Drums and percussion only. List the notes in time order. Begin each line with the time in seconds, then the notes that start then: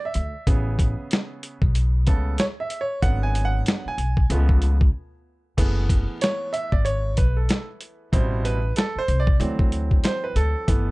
0.14 closed hi-hat
0.47 kick, closed hi-hat
0.79 kick, closed hi-hat
1.11 snare, closed hi-hat
1.43 closed hi-hat
1.62 kick
1.75 closed hi-hat
2.07 kick, closed hi-hat
2.38 snare, closed hi-hat
2.70 closed hi-hat
3.03 kick, closed hi-hat
3.35 closed hi-hat
3.66 snare, closed hi-hat
3.98 closed hi-hat
4.17 kick
4.30 closed hi-hat
4.49 kick
4.62 closed hi-hat
4.81 kick
5.58 kick, closed hi-hat, crash
5.89 kick, closed hi-hat
6.21 snare, closed hi-hat
6.54 closed hi-hat
6.72 kick
6.86 closed hi-hat
7.17 kick, closed hi-hat
7.49 snare, closed hi-hat
7.81 closed hi-hat
8.13 kick, closed hi-hat
8.45 closed hi-hat
8.76 snare, closed hi-hat
9.08 closed hi-hat
9.27 kick
9.41 closed hi-hat
9.59 kick
9.72 closed hi-hat
9.91 kick
10.04 snare, closed hi-hat
10.36 closed hi-hat
10.68 kick, closed hi-hat